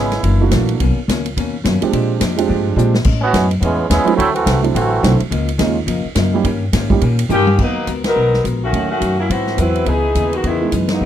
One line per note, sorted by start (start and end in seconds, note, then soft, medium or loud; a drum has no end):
0.00 0.22 G#1 medium
0.00 0.13 C#3 medium
0.00 0.13 G#3 medium
0.00 0.22 G#3 medium
0.00 0.13 B3 medium
0.00 0.22 B3 medium
0.00 0.22 C#4 medium
0.00 0.13 E4 medium
0.00 0.65 E4 medium
0.11 snare soft
0.11 ride soft
0.23 0.51 F#1 medium
0.23 0.41 F#2 medium
0.23 0.41 E3 medium
0.23 0.42 A#3 medium
0.23 0.42 D4 medium
0.23 kick soft
0.23 ride medium
0.41 0.78 E3 medium
0.41 0.78 A3 medium
0.41 0.78 A#3 medium
0.41 0.78 D4 medium
0.41 0.79 F#4 medium
0.51 0.79 A#1 medium
0.51 0.69 F#2 medium
0.51 0.70 E3 medium
0.51 0.70 A#3 medium
0.51 0.70 D4 medium
0.51 kick soft
0.51 snare medium
0.51 hi-hat pedal medium
0.51 ride medium
0.69 ride soft
0.80 0.95 B1 medium
0.80 0.97 B2 medium
0.80 0.98 D#3 medium
0.80 0.98 A#3 medium
0.80 0.99 C#4 medium
0.80 kick soft
0.80 ride medium
1.08 1.35 C#2 medium
1.08 1.26 B2 medium
1.08 1.26 D#3 medium
1.08 1.27 A#3 medium
1.08 1.27 C#4 medium
1.08 kick soft
1.08 snare medium
1.08 hi-hat pedal medium
1.08 ride medium
1.26 ride medium
1.37 1.64 D#2 medium
1.37 1.54 B2 medium
1.37 1.55 D#3 medium
1.37 1.55 A#3 medium
1.37 1.55 C#4 medium
1.37 kick soft
1.37 ride medium
1.64 1.80 F#2 medium
1.64 1.82 B2 medium
1.64 1.82 D#3 medium
1.64 1.83 A#3 medium
1.64 1.83 C#4 medium
1.64 kick soft
1.64 snare medium
1.64 hi-hat pedal medium
1.64 ride medium
1.81 2.19 F3 medium
1.81 2.19 G#3 medium
1.81 2.19 C4 medium
1.81 2.19 D4 medium
1.81 2.20 G4 medium
1.81 muted upright bass stroke soft
1.81 ride medium
1.92 2.10 A#2 medium
1.92 2.20 A#2 medium
1.92 2.10 G#3 medium
1.92 2.11 D4 medium
1.92 2.11 G4 medium
1.92 kick soft
1.92 ride medium
2.20 2.48 F2 medium
2.20 2.38 A#2 medium
2.20 2.38 G#3 medium
2.20 2.39 D4 medium
2.20 2.39 G4 medium
2.20 kick soft
2.20 snare medium
2.20 hi-hat pedal medium
2.20 ride medium
2.37 2.75 F3 medium
2.37 2.74 G#3 medium
2.37 2.75 C4 medium
2.37 2.75 D4 medium
2.37 2.75 G4 medium
2.37 ride medium
2.48 2.76 G2 medium
2.48 2.66 A#2 medium
2.48 2.66 G#3 medium
2.48 2.67 D4 medium
2.48 2.67 G4 medium
2.48 kick soft
2.76 3.04 A#2 medium
2.76 2.95 A#2 medium
2.76 2.92 F3 medium
2.76 2.92 G#3 medium
2.76 2.95 G#3 medium
2.76 2.92 C4 soft
2.76 2.92 D4 medium
2.76 2.96 D4 medium
2.76 2.96 G4 medium
2.76 2.93 G4 medium
2.76 hi-hat pedal medium
2.94 snare medium
3.04 3.33 A2 medium
3.04 3.24 A2 medium
3.04 3.24 G#3 medium
3.04 3.24 C#4 medium
3.04 3.24 D#4 medium
3.04 kick medium
3.04 crash medium
3.21 3.48 E3 medium
3.21 3.49 B3 medium
3.21 3.48 C#4 medium
3.21 3.49 F#4 loud
3.33 3.61 F#2 medium
3.33 3.51 A2 medium
3.33 3.52 G#3 medium
3.33 3.52 C#4 medium
3.33 3.52 D#4 medium
3.33 kick soft
3.33 snare medium
3.33 hi-hat pedal medium
3.33 ride medium
3.51 ride medium
3.60 3.89 E2 medium
3.60 3.79 A2 medium
3.60 3.87 E3 medium
3.60 3.87 G#3 medium
3.60 3.80 G#3 medium
3.60 3.88 B3 medium
3.60 3.87 C#4 medium
3.60 3.80 C#4 medium
3.60 3.81 D#4 medium
3.60 kick soft
3.60 ride medium
3.89 4.05 D#2 medium
3.89 4.08 A2 soft
3.89 4.16 G#3 medium
3.89 4.08 G#3 medium
3.89 4.16 B3 medium
3.89 4.16 C#4 medium
3.89 4.08 C#4 medium
3.89 4.09 D#4 medium
3.89 4.16 E4 loud
3.89 kick soft
3.89 snare medium
3.89 hi-hat pedal medium
3.89 ride medium
4.05 4.16 F#3 medium
4.05 4.16 A3 medium
4.05 4.16 C4 medium
4.05 4.17 D4 medium
4.05 4.17 E4 medium
4.05 muted upright bass stroke soft
4.05 ride soft
4.16 4.46 D2 medium
4.16 4.36 D3 soft
4.16 4.33 F#3 medium
4.16 4.36 F#3 medium
4.16 4.32 A3 medium
4.16 4.31 C4 medium
4.16 4.36 C4 medium
4.16 4.33 E4 loud
4.16 4.37 E4 medium
4.16 kick soft
4.16 ride medium
4.32 4.60 E3 medium
4.32 4.60 A3 medium
4.32 4.60 C4 medium
4.32 4.60 F#4 medium
4.32 ride soft
4.46 4.74 C2 medium
4.46 4.64 D3 medium
4.46 4.64 F#3 medium
4.46 4.65 C4 medium
4.46 4.65 E4 medium
4.46 kick soft
4.46 snare medium
4.46 hi-hat pedal medium
4.46 ride medium
4.62 4.73 F#3 medium
4.62 4.73 A3 medium
4.62 4.74 C4 medium
4.62 4.74 D4 medium
4.62 4.74 E4 medium
4.62 ride medium
4.74 5.02 A1 medium
4.74 4.92 D3 medium
4.74 5.17 E3 medium
4.74 4.93 F#3 medium
4.74 5.17 A3 medium
4.74 5.17 C4 medium
4.74 4.93 C4 soft
4.74 4.93 E4 medium
4.74 5.17 F#4 medium
4.74 kick soft
4.74 ride medium
5.02 5.19 B1 loud
5.02 5.20 D3 medium
5.02 5.18 F#3 medium
5.02 5.21 F#3 medium
5.02 5.18 A3 medium
5.02 5.21 C4 medium
5.02 5.18 C4 medium
5.02 5.19 D4 medium
5.02 5.21 E4 medium
5.02 5.19 F#4 medium
5.02 kick soft
5.02 snare medium
5.02 hi-hat pedal medium
5.02 ride medium
5.20 ride soft
5.30 5.58 C#2 medium
5.30 5.49 C#3 medium
5.30 5.49 F3 medium
5.30 5.49 A#3 medium
5.30 5.50 D#4 medium
5.30 kick soft
5.30 ride medium
5.48 ride medium
5.58 5.86 D#2 medium
5.58 5.77 C#3 medium
5.58 5.77 F3 medium
5.58 5.75 G#3 medium
5.58 5.77 A#3 medium
5.58 5.75 A#3 medium
5.58 5.76 C#4 medium
5.58 5.77 D#4 medium
5.58 5.76 D#4 medium
5.58 5.76 F4 medium
5.58 kick soft
5.58 snare medium
5.58 hi-hat pedal medium
5.58 ride medium
5.86 6.03 F2 medium
5.86 6.05 C#3 medium
5.86 6.05 F3 medium
5.86 6.06 A#3 medium
5.86 6.06 D#4 medium
5.86 kick soft
5.86 ride medium
6.05 muted upright bass stroke soft
6.15 6.43 F#2 medium
6.15 6.34 C#3 medium
6.15 6.34 F3 medium
6.15 6.34 A#3 medium
6.15 6.35 D#4 medium
6.15 kick soft
6.15 snare medium
6.15 hi-hat pedal medium
6.15 ride medium
6.34 6.44 G3 medium
6.34 6.44 A#3 medium
6.34 6.44 C#4 medium
6.34 6.45 D#4 medium
6.34 6.45 G4 medium
6.44 6.72 G2 medium
6.44 6.62 D#3 medium
6.44 6.63 A#3 medium
6.44 6.63 C#4 medium
6.44 6.63 G4 medium
6.44 kick soft
6.44 ride medium
6.73 7.01 G#2 medium
6.73 6.91 D#3 medium
6.73 6.91 A#3 medium
6.73 6.92 C#4 medium
6.73 6.92 G4 medium
6.73 kick soft
6.73 snare medium
6.73 hi-hat pedal medium
6.73 ride medium
6.90 7.00 G3 medium
6.90 7.01 A#3 medium
6.90 7.01 C#4 medium
6.90 7.01 D#4 medium
6.90 7.02 G4 medium
6.90 kick medium
7.01 7.28 A#2 medium
7.01 7.20 D#3 medium
7.01 7.20 A#3 medium
7.01 7.21 C#4 medium
7.01 7.21 G4 medium
7.01 kick soft
7.01 ride medium
7.19 ride medium
7.29 7.57 G2 medium
7.29 7.48 D#3 medium
7.29 7.57 D#3 medium
7.29 7.45 G3 medium
7.29 7.45 A#3 soft
7.29 7.57 A#3 medium
7.29 7.49 A#3 medium
7.29 7.45 C#4 soft
7.29 7.57 C#4 medium
7.29 7.49 C#4 medium
7.29 7.45 D#4 soft
7.29 7.46 G4 medium
7.29 7.49 G4 medium
7.29 7.58 G4 loud
7.29 hi-hat pedal medium
7.29 high tom medium
7.47 high tom medium
7.58 7.86 D#2 medium
7.58 7.74 F#3 soft
7.58 7.77 G#3 soft
7.58 7.74 A#3 soft
7.58 7.89 A#3 medium
7.58 7.74 B3 soft
7.58 7.77 B3 soft
7.58 7.75 D#4 medium
7.58 7.78 F#4 soft
7.58 7.78 A#4 soft
7.58 7.89 B4 medium
7.58 kick medium
7.58 crash medium
7.62 7.89 F#3 medium
7.62 7.89 D#4 medium
7.87 8.15 C#2 medium
7.87 8.05 G#3 medium
7.87 8.05 B3 medium
7.87 8.05 F#4 medium
7.87 8.06 A#4 medium
7.87 kick soft
7.87 hi-hat pedal medium
7.87 ride medium
8.04 8.43 F#3 medium
8.04 8.43 B3 medium
8.04 8.43 D#4 medium
8.04 8.43 A#4 loud
8.04 snare medium
8.04 ride medium
8.15 8.44 B1 medium
8.15 8.34 G#3 soft
8.15 8.34 B3 soft
8.15 8.34 F#4 soft
8.15 8.35 A#4 medium
8.34 snare soft
8.44 8.72 A#1 medium
8.44 8.62 G#3 medium
8.44 8.62 B3 medium
8.44 8.63 F#4 medium
8.44 8.63 A#4 medium
8.44 kick soft
8.44 hi-hat pedal medium
8.44 ride medium
8.63 8.89 D#3 medium
8.63 8.89 A3 medium
8.63 8.88 C#4 medium
8.63 8.89 F#4 medium
8.72 9.01 D#2 medium
8.72 8.91 D#3 soft
8.72 8.88 F#3 medium
8.72 8.91 A3 soft
8.72 8.88 A3 soft
8.72 8.91 C#4 soft
8.72 8.89 C#4 soft
8.72 8.89 D#4 medium
8.72 8.92 F#4 medium
8.72 kick soft
8.72 ride medium
8.90 9.17 D#3 medium
8.90 9.17 A3 medium
8.90 9.16 C#4 medium
8.90 9.17 F#4 medium
9.00 9.29 F#2 medium
9.00 9.19 D#3 soft
9.00 9.19 A3 medium
9.00 9.19 C#4 medium
9.00 9.19 F#4 medium
9.00 kick soft
9.00 hi-hat pedal medium
9.00 ride medium
9.18 9.29 F#3 medium
9.18 9.29 A#3 medium
9.18 9.29 C#4 medium
9.18 9.29 E4 medium
9.29 9.48 G#2 soft
9.29 9.57 G#2 medium
9.29 9.59 E3 medium
9.29 9.48 F#3 soft
9.29 9.59 B3 medium
9.29 9.58 C4 medium
9.29 9.48 C4 medium
9.29 9.49 E4 medium
9.29 9.59 F#4 medium
9.29 kick soft
9.29 ride medium
9.47 snare soft
9.56 9.86 E2 medium
9.56 9.76 G#2 soft
9.56 9.76 F#3 medium
9.56 9.87 F#3 medium
9.56 9.87 B3 medium
9.56 9.76 C4 medium
9.56 9.87 C4 medium
9.56 9.88 C4 soft
9.56 9.76 E4 medium
9.56 9.87 E4 medium
9.56 9.87 B4 medium
9.56 kick soft
9.56 hi-hat pedal medium
9.56 ride medium
9.60 9.88 E4 medium
9.75 ride soft
9.85 10.14 C#2 medium
9.85 10.04 C#3 soft
9.85 10.05 E3 soft
9.85 10.33 E3 medium
9.85 10.05 B3 soft
9.85 10.33 B3 medium
9.85 10.06 D#4 medium
9.85 10.33 D#4 medium
9.85 10.33 G#4 medium
9.85 kick soft
9.85 ride medium
10.15 10.43 D#2 medium
10.15 10.34 C#3 medium
10.15 10.34 E3 soft
10.15 10.34 B3 medium
10.15 10.34 D#4 medium
10.15 kick soft
10.15 hi-hat pedal medium
10.15 ride medium
10.33 10.45 D#3 medium
10.33 10.45 G#3 medium
10.33 10.45 B3 medium
10.33 10.45 F#4 medium
10.33 ride soft
10.43 10.72 E2 medium
10.43 10.62 C#3 soft
10.43 10.72 D#3 medium
10.43 10.62 E3 soft
10.43 10.72 G#3 medium
10.43 10.63 B3 medium
10.43 10.72 B3 medium
10.43 10.63 D#4 soft
10.43 10.72 E4 medium
10.43 kick soft
10.43 ride medium
10.61 10.99 E3 medium
10.61 10.99 G#3 medium
10.61 11.00 B3 medium
10.61 11.00 D#4 medium
10.72 11.00 F#2 medium
10.72 10.91 C#3 medium
10.72 10.91 E3 soft
10.72 10.91 B3 medium
10.72 10.92 D#4 medium
10.72 kick soft
10.72 hi-hat pedal medium
10.72 ride medium
10.88 11.05 F#3 medium
10.88 11.05 A#3 medium
10.88 11.05 B3 medium
10.88 11.05 D#4 medium
10.88 snare medium
10.88 ride medium
11.01 11.05 G#2 medium
11.01 11.05 G#3 soft
11.01 11.05 B3 soft